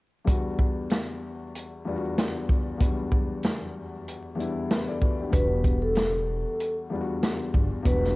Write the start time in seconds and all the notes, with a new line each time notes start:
0.25 E2 G3 B3 D4, kick, closed hi-hat
0.29 F#4
0.59 kick
0.90 snare, closed hi-hat
1.55 closed hi-hat
1.85 E2 G3 B3 D4
1.89 F4
1.96 F#4
2.18 snare, closed hi-hat
2.49 kick
2.77 E2 F#3 B3 D4, kick, closed hi-hat
2.82 G3 F#4
3.12 kick
3.43 snare, closed hi-hat
4.08 closed hi-hat
4.35 E2 G3 B3 D4
4.40 E4, closed hi-hat
4.70 B4 E5, snare, closed hi-hat
4.88 A4 D5
5.01 F#4 B4, kick
5.21 D4 G4
5.30 E1 E2 G3 B3 D4 B4, kick, closed hi-hat
5.35 F#4
5.64 kick, closed hi-hat
5.82 A4
5.95 snare, closed hi-hat
6.60 closed hi-hat
6.90 E2 G3 B3 D4
6.94 F4
7.01 F#4
7.23 snare, closed hi-hat
7.54 G1, kick
7.83 E1 E2 F#3 B3 D4 B4, kick, closed hi-hat
7.87 G3 F#4
8.04 snare